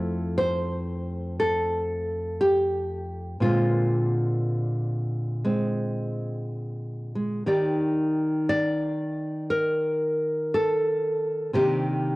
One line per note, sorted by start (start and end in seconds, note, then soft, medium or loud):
0.00 3.40 F2 medium
0.00 3.37 A3 soft
0.00 3.38 C4 soft
0.00 2.40 E4 soft
0.00 0.37 A4 soft
0.38 1.38 C5 medium
1.40 3.42 A4 medium
2.41 3.41 G4 medium
3.40 7.42 A#2 medium
3.40 7.43 D3 soft
3.40 5.44 G#3 soft
3.40 5.44 C4 soft
3.40 7.47 F4 medium
5.45 7.14 G#3 soft
5.45 7.47 C4 soft
7.15 7.46 G#3 soft
7.46 11.52 D#3 medium
7.46 11.49 D#4 soft
7.46 9.50 G4 soft
7.46 8.48 D5 soft
8.49 10.52 D5 medium
9.50 10.51 A#4 medium
10.54 11.54 A4 medium
11.53 12.16 C3 medium
11.53 12.16 D#3 soft
11.53 12.16 A#3 soft
11.53 12.16 D4 soft
11.53 12.16 G4 medium